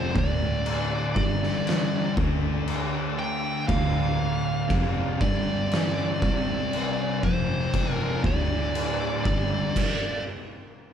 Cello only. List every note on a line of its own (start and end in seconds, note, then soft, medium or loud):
0.00 0.12 F2 medium
0.15 1.13 D2 medium
1.16 2.14 G2 medium
2.17 3.65 D2 medium
3.69 4.66 D2 loud
4.70 5.17 F2 loud
5.21 6.18 G2 medium
6.22 7.19 C2 medium
7.23 8.20 F2 medium
8.24 9.22 D2 loud
9.25 9.73 G2 medium